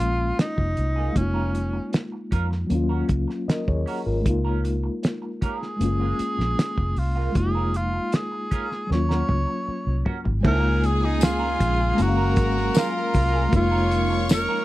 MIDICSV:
0, 0, Header, 1, 10, 480
1, 0, Start_track
1, 0, Key_signature, -5, "major"
1, 0, Tempo, 773196
1, 718, Time_signature, 4, 2, 24, 8
1, 9093, End_track
2, 0, Start_track
2, 0, Title_t, "Violin section"
2, 0, Program_c, 0, 48
2, 6482, Note_on_c, 0, 68, 76
2, 6482, Note_on_c, 0, 80, 92
2, 7422, Note_off_c, 0, 68, 0
2, 7422, Note_off_c, 0, 80, 0
2, 7438, Note_on_c, 0, 82, 86
2, 7439, Note_on_c, 0, 70, 84
2, 8378, Note_off_c, 0, 82, 0
2, 8379, Note_off_c, 0, 70, 0
2, 8396, Note_on_c, 0, 85, 95
2, 8397, Note_on_c, 0, 73, 78
2, 9093, Note_off_c, 0, 73, 0
2, 9093, Note_off_c, 0, 85, 0
2, 9093, End_track
3, 0, Start_track
3, 0, Title_t, "Clean electric guitar"
3, 0, Program_c, 1, 27
3, 596, Note_on_c, 1, 68, 62
3, 603, Note_on_c, 1, 65, 58
3, 608, Note_on_c, 1, 58, 55
3, 687, Note_off_c, 1, 68, 0
3, 691, Note_off_c, 1, 65, 0
3, 693, Note_off_c, 1, 58, 0
3, 832, Note_on_c, 1, 70, 60
3, 838, Note_on_c, 1, 65, 53
3, 844, Note_on_c, 1, 61, 48
3, 925, Note_off_c, 1, 70, 0
3, 928, Note_off_c, 1, 65, 0
3, 931, Note_off_c, 1, 61, 0
3, 1434, Note_on_c, 1, 61, 63
3, 1442, Note_on_c, 1, 65, 69
3, 1446, Note_on_c, 1, 70, 81
3, 1526, Note_off_c, 1, 61, 0
3, 1530, Note_off_c, 1, 65, 0
3, 1532, Note_off_c, 1, 70, 0
3, 1796, Note_on_c, 1, 70, 52
3, 1801, Note_on_c, 1, 66, 44
3, 1808, Note_on_c, 1, 61, 45
3, 1887, Note_off_c, 1, 70, 0
3, 1890, Note_off_c, 1, 66, 0
3, 1894, Note_off_c, 1, 61, 0
3, 2396, Note_on_c, 1, 61, 58
3, 2405, Note_on_c, 1, 66, 61
3, 2410, Note_on_c, 1, 70, 56
3, 2468, Note_off_c, 1, 61, 0
3, 2472, Note_off_c, 1, 66, 0
3, 2475, Note_off_c, 1, 70, 0
3, 2760, Note_on_c, 1, 70, 59
3, 2766, Note_on_c, 1, 65, 53
3, 2772, Note_on_c, 1, 61, 53
3, 2850, Note_off_c, 1, 70, 0
3, 2853, Note_off_c, 1, 65, 0
3, 2856, Note_off_c, 1, 61, 0
3, 3361, Note_on_c, 1, 61, 68
3, 3367, Note_on_c, 1, 65, 64
3, 3373, Note_on_c, 1, 70, 73
3, 3451, Note_off_c, 1, 61, 0
3, 3454, Note_off_c, 1, 65, 0
3, 3457, Note_off_c, 1, 70, 0
3, 3723, Note_on_c, 1, 65, 57
3, 3730, Note_on_c, 1, 58, 58
3, 3736, Note_on_c, 1, 56, 51
3, 3812, Note_off_c, 1, 65, 0
3, 3815, Note_off_c, 1, 58, 0
3, 3818, Note_off_c, 1, 56, 0
3, 4442, Note_on_c, 1, 65, 69
3, 4449, Note_on_c, 1, 58, 67
3, 4455, Note_on_c, 1, 56, 52
3, 4532, Note_off_c, 1, 65, 0
3, 4535, Note_off_c, 1, 58, 0
3, 4538, Note_off_c, 1, 56, 0
3, 4686, Note_on_c, 1, 70, 65
3, 4692, Note_on_c, 1, 65, 56
3, 4698, Note_on_c, 1, 61, 48
3, 4774, Note_off_c, 1, 70, 0
3, 4777, Note_off_c, 1, 65, 0
3, 4780, Note_off_c, 1, 61, 0
3, 5283, Note_on_c, 1, 61, 70
3, 5290, Note_on_c, 1, 65, 87
3, 5296, Note_on_c, 1, 70, 72
3, 5373, Note_off_c, 1, 61, 0
3, 5376, Note_off_c, 1, 65, 0
3, 5379, Note_off_c, 1, 70, 0
3, 5642, Note_on_c, 1, 70, 56
3, 5649, Note_on_c, 1, 66, 48
3, 5656, Note_on_c, 1, 61, 49
3, 5732, Note_off_c, 1, 70, 0
3, 5736, Note_off_c, 1, 66, 0
3, 5739, Note_off_c, 1, 61, 0
3, 6241, Note_on_c, 1, 61, 53
3, 6246, Note_on_c, 1, 66, 52
3, 6253, Note_on_c, 1, 70, 53
3, 6312, Note_off_c, 1, 61, 0
3, 6314, Note_off_c, 1, 66, 0
3, 6318, Note_off_c, 1, 70, 0
3, 6475, Note_on_c, 1, 60, 78
3, 6483, Note_on_c, 1, 64, 92
3, 6488, Note_on_c, 1, 69, 94
3, 6568, Note_off_c, 1, 60, 0
3, 6568, Note_on_c, 1, 61, 78
3, 6577, Note_off_c, 1, 64, 0
3, 6577, Note_on_c, 1, 65, 92
3, 6581, Note_off_c, 1, 69, 0
3, 6581, Note_on_c, 1, 70, 94
3, 6699, Note_off_c, 1, 61, 0
3, 6704, Note_off_c, 1, 65, 0
3, 6706, Note_off_c, 1, 70, 0
3, 7072, Note_on_c, 1, 70, 69
3, 7078, Note_on_c, 1, 65, 66
3, 7085, Note_on_c, 1, 61, 58
3, 7167, Note_off_c, 1, 70, 0
3, 7170, Note_off_c, 1, 65, 0
3, 7173, Note_off_c, 1, 61, 0
3, 7552, Note_on_c, 1, 70, 70
3, 7560, Note_on_c, 1, 65, 51
3, 7564, Note_on_c, 1, 58, 56
3, 7646, Note_off_c, 1, 70, 0
3, 7650, Note_off_c, 1, 65, 0
3, 7652, Note_off_c, 1, 58, 0
3, 7911, Note_on_c, 1, 58, 74
3, 7917, Note_on_c, 1, 65, 78
3, 7923, Note_on_c, 1, 68, 80
3, 8005, Note_off_c, 1, 58, 0
3, 8008, Note_off_c, 1, 65, 0
3, 8011, Note_off_c, 1, 68, 0
3, 8277, Note_on_c, 1, 68, 59
3, 8283, Note_on_c, 1, 65, 55
3, 8288, Note_on_c, 1, 58, 44
3, 8348, Note_off_c, 1, 68, 0
3, 8351, Note_off_c, 1, 65, 0
3, 8354, Note_off_c, 1, 58, 0
3, 8513, Note_on_c, 1, 70, 66
3, 8519, Note_on_c, 1, 65, 57
3, 8525, Note_on_c, 1, 61, 48
3, 8605, Note_off_c, 1, 70, 0
3, 8609, Note_off_c, 1, 65, 0
3, 8611, Note_off_c, 1, 61, 0
3, 8992, Note_on_c, 1, 70, 82
3, 9000, Note_on_c, 1, 65, 75
3, 9003, Note_on_c, 1, 61, 60
3, 9084, Note_off_c, 1, 70, 0
3, 9088, Note_off_c, 1, 65, 0
3, 9090, Note_off_c, 1, 61, 0
3, 9093, End_track
4, 0, Start_track
4, 0, Title_t, "Tenor saxophone"
4, 0, Program_c, 2, 66
4, 0, Note_on_c, 2, 65, 90
4, 221, Note_off_c, 2, 65, 0
4, 251, Note_on_c, 2, 63, 83
4, 727, Note_on_c, 2, 61, 74
4, 736, Note_off_c, 2, 63, 0
4, 1203, Note_off_c, 2, 61, 0
4, 3383, Note_on_c, 2, 68, 84
4, 4340, Note_on_c, 2, 65, 72
4, 4349, Note_off_c, 2, 68, 0
4, 4578, Note_on_c, 2, 68, 91
4, 4587, Note_off_c, 2, 65, 0
4, 4822, Note_on_c, 2, 65, 79
4, 4831, Note_off_c, 2, 68, 0
4, 5061, Note_on_c, 2, 68, 82
4, 5070, Note_off_c, 2, 65, 0
4, 5532, Note_off_c, 2, 68, 0
4, 5541, Note_on_c, 2, 73, 86
4, 6227, Note_off_c, 2, 73, 0
4, 6501, Note_on_c, 2, 70, 91
4, 6740, Note_on_c, 2, 68, 80
4, 6749, Note_off_c, 2, 70, 0
4, 6862, Note_on_c, 2, 63, 84
4, 6872, Note_off_c, 2, 68, 0
4, 6980, Note_on_c, 2, 65, 95
4, 6989, Note_off_c, 2, 63, 0
4, 7461, Note_on_c, 2, 66, 81
4, 7471, Note_off_c, 2, 65, 0
4, 7937, Note_on_c, 2, 65, 90
4, 7947, Note_off_c, 2, 66, 0
4, 8408, Note_off_c, 2, 65, 0
4, 8417, Note_on_c, 2, 65, 90
4, 8862, Note_off_c, 2, 65, 0
4, 8900, Note_on_c, 2, 70, 89
4, 9093, Note_off_c, 2, 70, 0
4, 9093, End_track
5, 0, Start_track
5, 0, Title_t, "Reed electric piano"
5, 0, Program_c, 3, 4
5, 0, Control_c, 3, 64, 127
5, 0, Note_on_c, 3, 56, 57
5, 0, Note_on_c, 3, 58, 45
5, 0, Note_on_c, 3, 61, 46
5, 0, Note_on_c, 3, 65, 58
5, 686, Note_off_c, 3, 56, 0
5, 695, Note_off_c, 3, 58, 0
5, 699, Note_on_c, 3, 56, 58
5, 704, Note_off_c, 3, 61, 0
5, 715, Note_on_c, 3, 58, 49
5, 726, Control_c, 3, 64, 0
5, 730, Note_on_c, 3, 63, 51
5, 732, Note_off_c, 3, 65, 0
5, 746, Note_on_c, 3, 65, 52
5, 825, Control_c, 3, 64, 127
5, 1650, Note_off_c, 3, 56, 0
5, 1657, Note_on_c, 3, 54, 64
5, 1658, Note_off_c, 3, 58, 0
5, 1666, Note_off_c, 3, 63, 0
5, 1673, Note_on_c, 3, 58, 65
5, 1674, Note_off_c, 3, 65, 0
5, 1685, Control_c, 3, 64, 0
5, 1688, Note_on_c, 3, 61, 66
5, 1706, Note_on_c, 3, 65, 78
5, 1793, Control_c, 3, 64, 127
5, 2161, Note_on_c, 3, 75, 58
5, 2164, Note_off_c, 3, 65, 0
5, 2166, Note_on_c, 3, 70, 52
5, 2274, Note_off_c, 3, 75, 0
5, 2277, Note_off_c, 3, 70, 0
5, 2286, Note_on_c, 3, 73, 64
5, 2291, Note_on_c, 3, 68, 55
5, 2511, Note_off_c, 3, 73, 0
5, 2513, Note_off_c, 3, 68, 0
5, 2521, Note_on_c, 3, 70, 59
5, 2522, Note_on_c, 3, 65, 51
5, 2609, Note_off_c, 3, 54, 0
5, 2615, Note_on_c, 3, 56, 60
5, 2617, Note_off_c, 3, 58, 0
5, 2625, Note_off_c, 3, 61, 0
5, 2631, Note_on_c, 3, 58, 60
5, 2648, Note_on_c, 3, 63, 58
5, 2649, Control_c, 3, 64, 0
5, 2658, Note_off_c, 3, 65, 0
5, 2665, Note_on_c, 3, 65, 68
5, 2748, Note_off_c, 3, 70, 0
5, 2749, Control_c, 3, 64, 127
5, 3569, Note_off_c, 3, 56, 0
5, 3577, Note_off_c, 3, 58, 0
5, 3578, Note_on_c, 3, 56, 55
5, 3586, Note_off_c, 3, 63, 0
5, 3594, Note_off_c, 3, 65, 0
5, 3597, Note_on_c, 3, 58, 57
5, 3607, Control_c, 3, 64, 0
5, 3610, Note_on_c, 3, 61, 54
5, 3627, Note_on_c, 3, 65, 60
5, 3711, Control_c, 3, 64, 127
5, 4531, Note_off_c, 3, 56, 0
5, 4541, Note_off_c, 3, 58, 0
5, 4545, Note_on_c, 3, 56, 57
5, 4547, Note_off_c, 3, 61, 0
5, 4556, Note_off_c, 3, 65, 0
5, 4560, Note_on_c, 3, 58, 48
5, 4571, Control_c, 3, 64, 0
5, 4578, Note_on_c, 3, 63, 52
5, 4592, Note_on_c, 3, 65, 66
5, 4673, Control_c, 3, 64, 127
5, 5495, Note_off_c, 3, 56, 0
5, 5503, Note_off_c, 3, 58, 0
5, 5506, Note_on_c, 3, 54, 56
5, 5512, Note_off_c, 3, 63, 0
5, 5519, Note_off_c, 3, 65, 0
5, 5523, Note_on_c, 3, 58, 50
5, 5531, Control_c, 3, 64, 0
5, 5537, Note_on_c, 3, 61, 50
5, 5554, Note_on_c, 3, 65, 58
5, 5632, Control_c, 3, 64, 127
5, 6455, Note_off_c, 3, 54, 0
5, 6462, Note_on_c, 3, 56, 61
5, 6464, Note_off_c, 3, 58, 0
5, 6471, Note_off_c, 3, 61, 0
5, 6477, Note_on_c, 3, 58, 55
5, 6479, Note_off_c, 3, 65, 0
5, 6489, Control_c, 3, 64, 0
5, 6493, Note_on_c, 3, 63, 56
5, 6510, Note_on_c, 3, 64, 49
5, 6537, Note_off_c, 3, 64, 0
5, 6552, Note_on_c, 3, 65, 63
5, 6584, Control_c, 3, 64, 127
5, 7411, Note_off_c, 3, 56, 0
5, 7418, Note_on_c, 3, 56, 61
5, 7420, Note_off_c, 3, 58, 0
5, 7427, Note_off_c, 3, 63, 0
5, 7433, Note_on_c, 3, 58, 60
5, 7449, Control_c, 3, 64, 0
5, 7450, Note_on_c, 3, 61, 57
5, 7457, Note_off_c, 3, 65, 0
5, 7466, Note_on_c, 3, 64, 58
5, 7494, Note_off_c, 3, 64, 0
5, 7505, Note_on_c, 3, 77, 67
5, 7571, Control_c, 3, 64, 127
5, 8365, Note_off_c, 3, 56, 0
5, 8372, Note_on_c, 3, 56, 61
5, 8376, Note_off_c, 3, 58, 0
5, 8384, Note_off_c, 3, 61, 0
5, 8387, Note_on_c, 3, 58, 56
5, 8403, Note_on_c, 3, 63, 55
5, 8406, Control_c, 3, 64, 0
5, 8413, Note_off_c, 3, 77, 0
5, 8421, Note_on_c, 3, 65, 70
5, 8512, Control_c, 3, 64, 127
5, 9093, Note_off_c, 3, 56, 0
5, 9093, Note_off_c, 3, 58, 0
5, 9093, Note_off_c, 3, 63, 0
5, 9093, Note_off_c, 3, 65, 0
5, 9093, End_track
6, 0, Start_track
6, 0, Title_t, "String machine"
6, 0, Program_c, 4, 50
6, 6486, Note_on_c, 4, 49, 86
6, 6486, Note_on_c, 4, 58, 81
6, 6488, Note_on_c, 4, 56, 75
6, 6488, Note_on_c, 4, 77, 93
6, 7433, Note_off_c, 4, 58, 0
6, 7434, Note_off_c, 4, 49, 0
6, 7435, Note_off_c, 4, 56, 0
6, 7442, Note_on_c, 4, 68, 59
6, 7443, Note_on_c, 4, 54, 68
6, 7443, Note_on_c, 4, 70, 74
6, 8383, Note_off_c, 4, 77, 0
6, 8390, Note_off_c, 4, 68, 0
6, 8391, Note_off_c, 4, 54, 0
6, 8404, Note_on_c, 4, 53, 86
6, 8404, Note_on_c, 4, 63, 76
6, 8406, Note_on_c, 4, 61, 79
6, 9093, Note_off_c, 4, 53, 0
6, 9093, Note_off_c, 4, 61, 0
6, 9093, Note_off_c, 4, 63, 0
6, 9093, Note_off_c, 4, 70, 0
6, 9093, End_track
7, 0, Start_track
7, 0, Title_t, "Fingered electric bass"
7, 0, Program_c, 5, 33
7, 0, Note_on_c, 5, 34, 69
7, 192, Note_off_c, 5, 34, 0
7, 362, Note_on_c, 5, 29, 76
7, 457, Note_off_c, 5, 29, 0
7, 481, Note_on_c, 5, 36, 75
7, 674, Note_off_c, 5, 36, 0
7, 721, Note_on_c, 5, 29, 82
7, 1108, Note_off_c, 5, 29, 0
7, 1443, Note_on_c, 5, 41, 77
7, 1635, Note_off_c, 5, 41, 0
7, 1680, Note_on_c, 5, 39, 96
7, 1874, Note_off_c, 5, 39, 0
7, 1923, Note_on_c, 5, 37, 70
7, 2018, Note_off_c, 5, 37, 0
7, 2285, Note_on_c, 5, 39, 76
7, 2380, Note_off_c, 5, 39, 0
7, 2523, Note_on_c, 5, 32, 82
7, 2618, Note_off_c, 5, 32, 0
7, 2644, Note_on_c, 5, 37, 86
7, 3030, Note_off_c, 5, 37, 0
7, 3603, Note_on_c, 5, 30, 101
7, 3796, Note_off_c, 5, 30, 0
7, 3964, Note_on_c, 5, 34, 73
7, 4060, Note_off_c, 5, 34, 0
7, 4208, Note_on_c, 5, 29, 84
7, 4302, Note_off_c, 5, 29, 0
7, 4323, Note_on_c, 5, 36, 79
7, 4516, Note_off_c, 5, 36, 0
7, 4567, Note_on_c, 5, 29, 87
7, 4953, Note_off_c, 5, 29, 0
7, 5529, Note_on_c, 5, 39, 102
7, 5720, Note_off_c, 5, 39, 0
7, 5768, Note_on_c, 5, 37, 78
7, 5863, Note_off_c, 5, 37, 0
7, 6126, Note_on_c, 5, 36, 78
7, 6221, Note_off_c, 5, 36, 0
7, 6365, Note_on_c, 5, 32, 67
7, 6461, Note_off_c, 5, 32, 0
7, 6488, Note_on_c, 5, 37, 94
7, 7180, Note_off_c, 5, 37, 0
7, 7206, Note_on_c, 5, 34, 85
7, 7398, Note_off_c, 5, 34, 0
7, 7445, Note_on_c, 5, 30, 106
7, 7682, Note_off_c, 5, 30, 0
7, 7682, Note_on_c, 5, 32, 78
7, 7875, Note_off_c, 5, 32, 0
7, 8163, Note_on_c, 5, 36, 85
7, 8355, Note_off_c, 5, 36, 0
7, 8400, Note_on_c, 5, 29, 109
7, 8973, Note_off_c, 5, 29, 0
7, 9093, End_track
8, 0, Start_track
8, 0, Title_t, "Muted clean electric guitar strokes"
8, 0, Note_on_c, 9, 29, 35
8, 62, Note_off_c, 9, 29, 0
8, 115, Note_on_c, 9, 29, 36
8, 177, Note_off_c, 9, 29, 0
8, 232, Note_on_c, 9, 29, 36
8, 294, Note_off_c, 9, 29, 0
8, 354, Note_on_c, 9, 29, 33
8, 416, Note_off_c, 9, 29, 0
8, 714, Note_on_c, 9, 29, 42
8, 776, Note_off_c, 9, 29, 0
8, 957, Note_on_c, 9, 29, 33
8, 1019, Note_off_c, 9, 29, 0
8, 1076, Note_on_c, 9, 29, 42
8, 1138, Note_off_c, 9, 29, 0
8, 1193, Note_on_c, 9, 29, 33
8, 1255, Note_off_c, 9, 29, 0
8, 1318, Note_on_c, 9, 29, 40
8, 1380, Note_off_c, 9, 29, 0
8, 1558, Note_on_c, 9, 29, 37
8, 1620, Note_off_c, 9, 29, 0
8, 1678, Note_on_c, 9, 29, 31
8, 1740, Note_off_c, 9, 29, 0
8, 1912, Note_on_c, 9, 29, 35
8, 1975, Note_off_c, 9, 29, 0
8, 2034, Note_on_c, 9, 29, 35
8, 2097, Note_off_c, 9, 29, 0
8, 2161, Note_on_c, 9, 29, 30
8, 2223, Note_off_c, 9, 29, 0
8, 2521, Note_on_c, 9, 29, 31
8, 2583, Note_off_c, 9, 29, 0
8, 2640, Note_on_c, 9, 29, 29
8, 2702, Note_off_c, 9, 29, 0
8, 2880, Note_on_c, 9, 29, 37
8, 2942, Note_off_c, 9, 29, 0
8, 3002, Note_on_c, 9, 29, 44
8, 3064, Note_off_c, 9, 29, 0
8, 3122, Note_on_c, 9, 29, 36
8, 3184, Note_off_c, 9, 29, 0
8, 3241, Note_on_c, 9, 29, 41
8, 3303, Note_off_c, 9, 29, 0
8, 3602, Note_on_c, 9, 29, 38
8, 3664, Note_off_c, 9, 29, 0
8, 3963, Note_on_c, 9, 29, 39
8, 4026, Note_off_c, 9, 29, 0
8, 4086, Note_on_c, 9, 29, 31
8, 4148, Note_off_c, 9, 29, 0
8, 4208, Note_on_c, 9, 29, 41
8, 4270, Note_off_c, 9, 29, 0
8, 4572, Note_on_c, 9, 29, 39
8, 4634, Note_off_c, 9, 29, 0
8, 4808, Note_on_c, 9, 29, 28
8, 4870, Note_off_c, 9, 29, 0
8, 4927, Note_on_c, 9, 29, 39
8, 4989, Note_off_c, 9, 29, 0
8, 5046, Note_on_c, 9, 29, 40
8, 5108, Note_off_c, 9, 29, 0
8, 5165, Note_on_c, 9, 29, 32
8, 5227, Note_off_c, 9, 29, 0
8, 5403, Note_on_c, 9, 29, 33
8, 5465, Note_off_c, 9, 29, 0
8, 5521, Note_on_c, 9, 29, 33
8, 5583, Note_off_c, 9, 29, 0
8, 5763, Note_on_c, 9, 29, 39
8, 5825, Note_off_c, 9, 29, 0
8, 5879, Note_on_c, 9, 29, 42
8, 5941, Note_off_c, 9, 29, 0
8, 6002, Note_on_c, 9, 29, 27
8, 6064, Note_off_c, 9, 29, 0
8, 6360, Note_on_c, 9, 29, 35
8, 6422, Note_off_c, 9, 29, 0
8, 6838, Note_on_c, 9, 29, 38
8, 6900, Note_off_c, 9, 29, 0
8, 6955, Note_on_c, 9, 29, 37
8, 7017, Note_off_c, 9, 29, 0
8, 7195, Note_on_c, 9, 29, 34
8, 7257, Note_off_c, 9, 29, 0
8, 7315, Note_on_c, 9, 29, 45
8, 7377, Note_off_c, 9, 29, 0
8, 7433, Note_on_c, 9, 29, 36
8, 7495, Note_off_c, 9, 29, 0
8, 7795, Note_on_c, 9, 29, 44
8, 7857, Note_off_c, 9, 29, 0
8, 8154, Note_on_c, 9, 29, 35
8, 8216, Note_off_c, 9, 29, 0
8, 8397, Note_on_c, 9, 29, 47
8, 8459, Note_off_c, 9, 29, 0
8, 8636, Note_on_c, 9, 29, 30
8, 8698, Note_off_c, 9, 29, 0
8, 8756, Note_on_c, 9, 29, 43
8, 8818, Note_off_c, 9, 29, 0
8, 8874, Note_on_c, 9, 29, 45
8, 8936, Note_off_c, 9, 29, 0
8, 9093, End_track
9, 0, Start_track
9, 0, Title_t, "Muted fingered electric bass strokes"
9, 2162, Note_on_c, 9, 29, 41
9, 2224, Note_off_c, 9, 29, 0
9, 3846, Note_on_c, 9, 29, 35
9, 3908, Note_off_c, 9, 29, 0
9, 6011, Note_on_c, 9, 29, 39
9, 6073, Note_off_c, 9, 29, 0
9, 9093, End_track
10, 0, Start_track
10, 0, Title_t, "Drums"
10, 242, Note_on_c, 9, 42, 78
10, 243, Note_on_c, 9, 38, 97
10, 304, Note_off_c, 9, 42, 0
10, 305, Note_off_c, 9, 38, 0
10, 359, Note_on_c, 9, 36, 83
10, 421, Note_off_c, 9, 36, 0
10, 477, Note_on_c, 9, 42, 59
10, 539, Note_off_c, 9, 42, 0
10, 718, Note_on_c, 9, 42, 77
10, 719, Note_on_c, 9, 36, 99
10, 780, Note_off_c, 9, 42, 0
10, 781, Note_off_c, 9, 36, 0
10, 961, Note_on_c, 9, 42, 64
10, 1023, Note_off_c, 9, 42, 0
10, 1197, Note_on_c, 9, 42, 65
10, 1206, Note_on_c, 9, 38, 90
10, 1259, Note_off_c, 9, 42, 0
10, 1268, Note_off_c, 9, 38, 0
10, 1439, Note_on_c, 9, 42, 58
10, 1440, Note_on_c, 9, 36, 83
10, 1502, Note_off_c, 9, 42, 0
10, 1503, Note_off_c, 9, 36, 0
10, 1564, Note_on_c, 9, 38, 36
10, 1626, Note_off_c, 9, 38, 0
10, 1676, Note_on_c, 9, 42, 86
10, 1739, Note_off_c, 9, 42, 0
10, 1916, Note_on_c, 9, 42, 70
10, 1920, Note_on_c, 9, 36, 84
10, 1978, Note_off_c, 9, 42, 0
10, 1983, Note_off_c, 9, 36, 0
10, 2048, Note_on_c, 9, 38, 37
10, 2110, Note_off_c, 9, 38, 0
10, 2169, Note_on_c, 9, 42, 81
10, 2170, Note_on_c, 9, 38, 105
10, 2231, Note_off_c, 9, 42, 0
10, 2232, Note_off_c, 9, 38, 0
10, 2284, Note_on_c, 9, 36, 87
10, 2346, Note_off_c, 9, 36, 0
10, 2405, Note_on_c, 9, 46, 58
10, 2467, Note_off_c, 9, 46, 0
10, 2643, Note_on_c, 9, 36, 104
10, 2643, Note_on_c, 9, 42, 76
10, 2705, Note_off_c, 9, 36, 0
10, 2705, Note_off_c, 9, 42, 0
10, 2886, Note_on_c, 9, 42, 73
10, 2948, Note_off_c, 9, 42, 0
10, 3124, Note_on_c, 9, 42, 71
10, 3134, Note_on_c, 9, 38, 101
10, 3186, Note_off_c, 9, 42, 0
10, 3196, Note_off_c, 9, 38, 0
10, 3364, Note_on_c, 9, 42, 56
10, 3365, Note_on_c, 9, 36, 77
10, 3426, Note_off_c, 9, 42, 0
10, 3427, Note_off_c, 9, 36, 0
10, 3492, Note_on_c, 9, 38, 35
10, 3554, Note_off_c, 9, 38, 0
10, 3605, Note_on_c, 9, 42, 88
10, 3667, Note_off_c, 9, 42, 0
10, 3843, Note_on_c, 9, 42, 70
10, 3905, Note_off_c, 9, 42, 0
10, 3975, Note_on_c, 9, 38, 37
10, 4037, Note_off_c, 9, 38, 0
10, 4090, Note_on_c, 9, 42, 83
10, 4091, Note_on_c, 9, 38, 98
10, 4152, Note_off_c, 9, 42, 0
10, 4153, Note_off_c, 9, 38, 0
10, 4207, Note_on_c, 9, 36, 85
10, 4269, Note_off_c, 9, 36, 0
10, 4323, Note_on_c, 9, 46, 61
10, 4385, Note_off_c, 9, 46, 0
10, 4563, Note_on_c, 9, 42, 73
10, 4565, Note_on_c, 9, 36, 104
10, 4625, Note_off_c, 9, 42, 0
10, 4627, Note_off_c, 9, 36, 0
10, 4806, Note_on_c, 9, 42, 64
10, 4868, Note_off_c, 9, 42, 0
10, 5043, Note_on_c, 9, 42, 75
10, 5052, Note_on_c, 9, 38, 88
10, 5105, Note_off_c, 9, 42, 0
10, 5114, Note_off_c, 9, 38, 0
10, 5285, Note_on_c, 9, 42, 59
10, 5287, Note_on_c, 9, 36, 76
10, 5347, Note_off_c, 9, 42, 0
10, 5349, Note_off_c, 9, 36, 0
10, 5411, Note_on_c, 9, 38, 33
10, 5473, Note_off_c, 9, 38, 0
10, 5535, Note_on_c, 9, 38, 46
10, 5597, Note_off_c, 9, 38, 0
10, 5653, Note_on_c, 9, 38, 50
10, 5715, Note_off_c, 9, 38, 0
10, 5765, Note_on_c, 9, 48, 65
10, 5827, Note_off_c, 9, 48, 0
10, 6245, Note_on_c, 9, 43, 81
10, 6307, Note_off_c, 9, 43, 0
10, 6365, Note_on_c, 9, 43, 72
10, 6428, Note_off_c, 9, 43, 0
10, 6484, Note_on_c, 9, 49, 92
10, 6485, Note_on_c, 9, 36, 112
10, 6546, Note_off_c, 9, 49, 0
10, 6547, Note_off_c, 9, 36, 0
10, 6727, Note_on_c, 9, 42, 72
10, 6789, Note_off_c, 9, 42, 0
10, 6959, Note_on_c, 9, 54, 85
10, 6963, Note_on_c, 9, 42, 83
10, 6973, Note_on_c, 9, 38, 101
10, 7021, Note_off_c, 9, 54, 0
10, 7025, Note_off_c, 9, 42, 0
10, 7035, Note_off_c, 9, 38, 0
10, 7204, Note_on_c, 9, 36, 85
10, 7204, Note_on_c, 9, 42, 65
10, 7266, Note_off_c, 9, 36, 0
10, 7266, Note_off_c, 9, 42, 0
10, 7437, Note_on_c, 9, 42, 97
10, 7499, Note_off_c, 9, 42, 0
10, 7674, Note_on_c, 9, 42, 73
10, 7679, Note_on_c, 9, 36, 90
10, 7736, Note_off_c, 9, 42, 0
10, 7741, Note_off_c, 9, 36, 0
10, 7804, Note_on_c, 9, 38, 35
10, 7866, Note_off_c, 9, 38, 0
10, 7913, Note_on_c, 9, 54, 73
10, 7924, Note_on_c, 9, 42, 93
10, 7925, Note_on_c, 9, 38, 109
10, 7975, Note_off_c, 9, 54, 0
10, 7986, Note_off_c, 9, 42, 0
10, 7987, Note_off_c, 9, 38, 0
10, 8156, Note_on_c, 9, 46, 68
10, 8161, Note_on_c, 9, 36, 100
10, 8218, Note_off_c, 9, 46, 0
10, 8223, Note_off_c, 9, 36, 0
10, 8396, Note_on_c, 9, 42, 84
10, 8398, Note_on_c, 9, 36, 112
10, 8458, Note_off_c, 9, 42, 0
10, 8460, Note_off_c, 9, 36, 0
10, 8637, Note_on_c, 9, 42, 79
10, 8699, Note_off_c, 9, 42, 0
10, 8873, Note_on_c, 9, 54, 92
10, 8874, Note_on_c, 9, 42, 76
10, 8883, Note_on_c, 9, 38, 106
10, 8935, Note_off_c, 9, 54, 0
10, 8936, Note_off_c, 9, 42, 0
10, 8945, Note_off_c, 9, 38, 0
10, 9093, End_track
0, 0, End_of_file